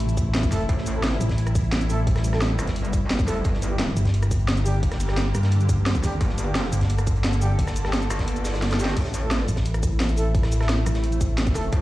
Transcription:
Already playing: A1 C3 A3 E4
0.00 closed hi-hat
0.09 closed hi-hat, cabasa
0.17 kick, closed hi-hat, cabasa
0.35 snare, closed hi-hat
0.43 kick, closed hi-hat, cabasa
0.51 A3 E4 A4, kick, cross-stick, snare, closed hi-hat, open hi-hat, cabasa
0.60 closed hi-hat
0.69 A1 G3, kick, closed hi-hat
0.78 snare
0.86 closed hi-hat, cabasa
0.95 A3 E4 A4
1.03 snare, closed hi-hat
1.12 snare
1.21 A1, closed hi-hat, cabasa
1.29 kick, snare, closed hi-hat
1.38 closed hi-hat
1.47 cross-stick, closed hi-hat, cabasa
1.55 kick, closed hi-hat, cabasa
1.64 closed hi-hat
1.72 snare, closed hi-hat
1.81 closed hi-hat, cabasa
1.90 A3 E4 A4, closed hi-hat, open hi-hat, cabasa
2.07 kick, closed hi-hat
2.16 cross-stick, snare, closed hi-hat
2.24 closed hi-hat, cabasa
2.33 A3 E4 A4, cross-stick, snare
2.42 snare, closed hi-hat
2.59 G1, cross-stick, closed hi-hat, cabasa
2.67 kick, snare, closed hi-hat
2.76 closed hi-hat
2.85 closed hi-hat, cabasa
2.93 kick, closed hi-hat, cabasa
3.10 snare, closed hi-hat
3.19 F#1, kick, closed hi-hat, cabasa
3.28 A3 E4 A4, kick, cross-stick, snare, closed hi-hat, open hi-hat, cabasa
3.36 closed hi-hat
3.44 G1 D3 A#3 G4, kick, closed hi-hat
3.54 snare
3.62 closed hi-hat, cabasa
3.71 G3 D4 G4
3.79 snare, closed hi-hat
3.88 snare
3.97 G1, closed hi-hat, cabasa
4.05 kick, snare, closed hi-hat
4.14 closed hi-hat
4.23 cross-stick, closed hi-hat, cabasa
4.31 kick, closed hi-hat, cabasa
4.39 closed hi-hat
4.48 snare, closed hi-hat
4.57 closed hi-hat, cabasa
4.66 G3 D4 G4, closed hi-hat, open hi-hat, cabasa
4.83 kick, closed hi-hat
4.91 cross-stick, snare, closed hi-hat
5.00 closed hi-hat, cabasa
5.08 G3 D4 G4, cross-stick, snare
5.17 snare, closed hi-hat
5.35 G2, cross-stick, closed hi-hat, cabasa
5.43 snare, closed hi-hat
5.51 closed hi-hat
5.61 closed hi-hat, cabasa
5.69 kick, closed hi-hat, cabasa
5.86 snare, closed hi-hat
5.95 kick, closed hi-hat, cabasa
6.03 G3 D4 G4, kick, cross-stick, snare, closed hi-hat, open hi-hat, cabasa
6.12 closed hi-hat
6.21 G1 A4, kick, closed hi-hat
6.29 snare
6.38 closed hi-hat, cabasa
6.47 G3 D4 G4
6.55 snare, closed hi-hat
6.64 snare
6.72 G1, closed hi-hat, cabasa
6.81 kick, snare, closed hi-hat
6.89 closed hi-hat
6.98 cross-stick, closed hi-hat, cabasa
7.07 kick, closed hi-hat, cabasa
7.16 closed hi-hat
7.23 snare, closed hi-hat
7.33 closed hi-hat, cabasa
7.41 G3 D4 G4, closed hi-hat, open hi-hat, cabasa
7.59 kick, closed hi-hat
7.67 cross-stick, snare, cabasa
7.76 closed hi-hat, cabasa
7.85 G3 D4 G4, cross-stick, snare
7.93 snare, closed hi-hat
8.02 cabasa
8.10 G1, cross-stick, closed hi-hat, cabasa
8.19 kick, snare, closed hi-hat
8.27 closed hi-hat
8.36 closed hi-hat, cabasa
8.44 snare, closed hi-hat, cabasa
8.54 snare, closed hi-hat
8.62 snare, closed hi-hat
8.71 snare, closed hi-hat, cabasa
8.74 snare
8.79 G3 D4 G4, closed hi-hat, open hi-hat, cabasa
8.85 snare
8.88 snare, closed hi-hat
8.96 A1 C3 A3 E4, kick, closed hi-hat, crash
9.05 snare
9.14 closed hi-hat, cabasa
9.22 A3 E4 A4
9.31 snare, closed hi-hat
9.40 snare
9.48 A1, closed hi-hat, cabasa
9.56 kick, snare, closed hi-hat
9.65 closed hi-hat
9.74 cross-stick, closed hi-hat, cabasa
9.83 kick, closed hi-hat, cabasa
9.92 closed hi-hat
10.00 snare, closed hi-hat
10.09 closed hi-hat, cabasa
10.16 A3 E4 A4, closed hi-hat, open hi-hat, cabasa
10.35 kick, closed hi-hat
10.43 cross-stick, snare, closed hi-hat
10.52 closed hi-hat, cabasa
10.60 A3 E4 A4, cross-stick, snare
10.68 snare, closed hi-hat
10.86 A1, cross-stick, closed hi-hat, cabasa
10.94 snare, closed hi-hat
11.03 closed hi-hat
11.12 closed hi-hat, cabasa
11.21 kick, closed hi-hat, cabasa
11.38 snare, closed hi-hat
11.47 kick, closed hi-hat, cabasa
11.55 A3 E4 A4, kick, cross-stick, snare, closed hi-hat, open hi-hat, cabasa
11.63 closed hi-hat
11.72 A1 D4, kick, closed hi-hat

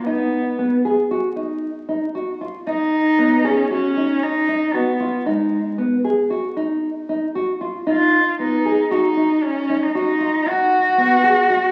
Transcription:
0.05 B3 D#4
0.59 B3
0.85 G#4
1.11 F#4
1.36 D#4
1.89 D#4
2.15 F#4
2.41 F4
2.67 D#4
3.19 B3
3.44 C#4 G#4
3.71 C#4 F#4
3.97 D#4
4.23 D#4
4.49 D#4
4.74 B3 F#4
5.00 F4
5.26 G#3 D#4
5.78 B3
6.04 G#4
6.30 F#4
6.57 D#4
7.09 D#4
7.35 F#4
7.61 F4
7.87 D#4 F4
8.39 B3 D#4
8.65 G#4
8.91 D#4 F#4
9.17 D#4
9.43 C#4
9.69 D#4
9.83 D#4
9.94 D#4 F#4
10.20 F4
10.46 D#4 F#4
10.98 B3
11.24 G#4
11.50 F#4

